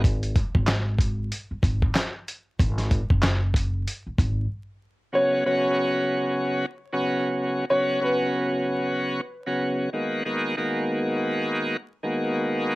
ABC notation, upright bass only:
X:1
M:4/4
L:1/16
Q:"Swing 16ths" 1/4=94
K:F#mix
V:1 name="Upright bass" clef=bass
G,,,3 G,,,4- G,,, z2 G,,,2 z4 | G,,,3 F,,,4- F,,, z2 G,,,2 z4 | z16 | z16 |
z16 |]